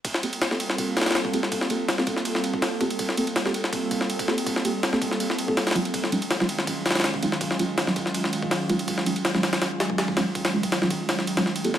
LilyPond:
<<
  \new Staff \with { instrumentName = "Synth stab" } { \time 4/4 \key ees \lydian \tempo 4 = 163 r8 <bes c' f' g' a'>16 r8 <bes c' f' g' a'>16 r2 <bes c' f' g' a'>16 r16 | r8 <bes c' f' g' a'>16 r8 <bes c' f' g' a'>16 r2 <bes c' f' g' a'>16 r16 | r8 <bes c' f' g' a'>16 r8 <bes c' f' g' a'>16 r2 <bes c' f' g' a'>16 r16 | r8 <bes c' f' g' a'>16 r8 <bes c' f' g' a'>16 r4 r16 <bes c' f' g' a'>16 r8 <fis aes cis' ees' f'>8~ |
<fis aes cis' ees' f'>8 <ges aes des' ees' f'>16 r8 <ges aes des' ees' f'>16 r2 <ges aes des' ees' f'>16 r16 | r8 <ges aes des' ees' f'>16 r8 <ges aes des' ees' f'>16 r2 <ges aes des' ees' f'>16 r16 | r8 <ges aes des' ees' f'>16 r8 <ges aes des' ees' f'>16 r2 <ges aes des' ees' f'>16 r16 | r8 <ges aes des' ees' f'>16 r8 <ges aes des' ees' f'>16 r4 r16 <ges aes des' ees' f'>16 r8 <bes c' f' g' a'>8 | }
  \new Staff \with { instrumentName = "Ambient pad" } { \time 4/4 \key ees \lydian r8. <g bes c' f' a'>2.~ <g bes c' f' a'>16 | r8. <g bes c' f' a'>2.~ <g bes c' f' a'>16 | r8. <g bes c' f' a'>2.~ <g bes c' f' a'>16 | r1 |
r8. <ees ges aes des' f'>2.~ <ees ges aes des' f'>16 | r8. <ees ges aes des' f'>2.~ <ees ges aes des' f'>16 | r8. <ees ges aes des' f'>2.~ <ees ges aes des' f'>16 | r1 | }
  \new DrumStaff \with { instrumentName = "Drums" } \drummode { \time 4/4 <bd cymr>16 sn16 cymr16 cymr16 <cymr sn>16 sn16 cymr16 sn16 <bd cymr>8 <cymr sn>32 <cymr sn>32 <cymr sn>32 <cymr sn>32 <cymr sn>16 bd16 cymr16 sn16 | <bd cymr>16 sn16 cymr8 <cymr sn>16 sn16 <bd cymr>16 sn16 cymr16 sn16 cymr16 bd16 <cymr sn>8 <bd cymr>16 cymr16 | <bd cymr>16 sn16 cymr16 cymr16 <cymr sn>16 sn16 cymr16 sn16 <bd cymr>8 <bd cymr>16 sn16 cymr16 <bd cymr>16 sn16 cymr16 | <bd cymr>16 sn16 cymr8 <cymr sn>16 sn16 <bd cymr>16 sn16 cymr16 sn16 cymr16 bd16 <cymr sn>16 <cymr sn>32 <cymr sn>32 <bd cymr>16 cymr16 |
<bd cymr>16 sn16 cymr16 cymr16 <cymr sn>16 sn16 cymr16 sn16 <bd cymr>8 <cymr sn>32 <cymr sn>32 <cymr sn>32 <cymr sn>32 <cymr sn>16 bd16 cymr16 sn16 | <bd cymr>16 sn16 cymr8 <cymr sn>16 sn16 <bd cymr>16 sn16 cymr16 sn16 cymr16 bd16 <cymr sn>8 <bd cymr>16 cymr16 | <bd cymr>16 sn16 cymr16 cymr16 <cymr sn>16 sn16 <cymr sn>16 <cymr sn>16 <cymr sn>8 <cymr sn>16 bd16 <cymr sn>16 bd16 <cymr sn>8 | <bd cymr>16 <cymr sn>8 <bd cymr>16 <cymr sn>16 sn16 <bd cymr>8 <cymr sn>16 sn16 cymr16 <cymr sn>16 sn16 cymr16 cymr16 sn16 | }
>>